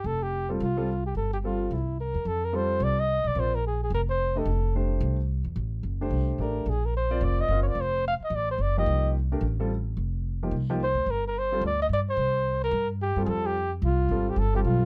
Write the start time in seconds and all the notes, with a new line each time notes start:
0.04 F1 A4
0.23 G4
0.49 G3 C4 F4 A4
0.60 C2 F4
0.77 G3 C4 F4 A4
1.06 G4
1.15 G1 A4
1.33 G4
1.44 G3 C4 F4 A4
1.71 C2 E4
2.00 A#4
2.14 E2
2.25 F2 A4
2.45 A#4
2.53 G3 C4 F4 A4 C5
2.80 C2 D5
3.00 D#5
3.24 B1 D5
3.35 A#1 C4 F4 A#4 D5
3.39 C5
3.55 A#4
3.67 G#4
3.83 G#4
3.90 F1 A#4
4.10 C5
4.35 A3 D4 G4 A4 D#5
4.45 F1
4.76 A3 D4 G4 C5
5.01 C2
5.44 E2
5.56 A1
5.83 F#1
6.01 A3 D4 G4 C5
6.10 C2
6.38 A1 A3 D4 G4 A#4 D5
6.66 A#1 G#4
6.85 A#4
6.97 C5
7.11 C4 F4 A#4 D5
7.21 F1 D5
7.41 D#5
7.48 F#1 C4 F4 A#4 F5
7.63 C#5
7.68 D5
7.75 F1
7.81 C5
8.08 F5
8.20 muted upright bass stroke
8.24 D#5
8.30 A1
8.35 D5
8.51 C5
8.58 F#1 D5
8.77 F3 A#3 D#4 G4 D#5
8.86 C2
9.32 A3 D4 G4 A#4
9.41 A1
9.60 G3 C4 F4 A4
9.97 F1
10.43 F3 A#3 D#4 G4
10.51 C2
10.70 F3 A#3 D#4 G4
10.83 C5
10.95 D2
11.06 G1
11.10 A#4
11.27 A#4
11.38 C5
11.52 G3 C4 F4 A4
11.61 D2
11.66 D5
11.82 D#5
11.89 G2
11.93 D5
12.10 C5
12.17 C2
12.64 A#4
12.71 G2
13.02 G4
13.16 G2 G3 C4 F4 A4
13.25 F2 G#4 A4
13.46 G4
13.82 C2 F4
14.09 G#1 G3 C4 F4 A4
14.30 G4
14.36 G1 A4
14.54 G3 C4 F4 G4 A4
14.65 B1 F4